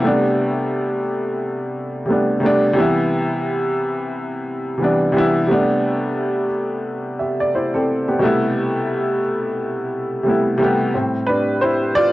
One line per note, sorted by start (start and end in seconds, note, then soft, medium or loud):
0.00 0.99 C3 medium
0.00 1.00 G3 medium
0.00 1.01 A3 medium
0.05 1.02 B3 medium
0.05 1.02 D4 medium
2.06 2.33 C3 medium
2.06 2.34 G3 medium
2.06 2.34 A3 medium
2.10 2.35 B3 medium
2.10 2.36 D4 medium
2.40 2.67 C3 medium
2.40 2.68 G3 medium
2.40 2.68 A3 medium
2.44 2.69 B3 medium
2.44 2.70 D4 loud
2.73 3.72 C3 loud
2.73 3.73 E3 medium
2.73 3.74 G3 medium
2.78 3.74 B3 medium
2.78 3.75 E4 medium
4.78 5.05 C3 medium
4.78 5.06 E3 medium
4.78 5.07 G3 medium
4.83 5.08 B3 medium
4.83 5.08 D4 medium
5.12 5.39 C3 medium
5.12 5.40 E3 medium
5.12 5.41 G3 medium
5.17 5.42 B3 medium
5.17 5.42 E4 loud
5.47 6.45 C3 medium
5.47 6.46 G3 medium
5.47 6.47 A3 medium
5.51 6.47 B3 medium
5.51 6.48 D4 medium
7.19 7.39 G4 soft
7.19 7.39 E5 medium
7.40 7.53 D5 medium
7.55 7.74 E4 medium
7.55 7.73 C5 medium
7.74 8.07 C4 medium
7.74 8.06 A4 medium
8.08 8.22 B3 medium
8.08 8.40 G4 medium
8.19 8.28 B2 medium
8.19 9.18 G3 medium
8.19 9.19 A3 medium
8.24 9.21 C3 medium
8.24 9.20 B3 medium
8.24 9.21 E4 medium
10.23 10.51 C3 medium
10.23 10.51 G3 medium
10.23 10.52 A3 medium
10.28 10.53 B3 medium
10.28 10.54 E4 medium
10.58 10.85 C3 medium
10.58 10.86 G3 medium
10.58 10.86 A3 medium
10.62 10.87 B3 medium
10.62 10.88 G4 medium
10.94 11.42 A2 medium
10.94 11.42 G3 soft
10.94 11.42 C4 medium
11.27 11.60 D4 medium
11.27 11.63 B4 medium
11.61 11.71 E4 medium
11.61 11.69 C5 medium
11.95 12.12 F4 medium
11.95 12.12 D5 loud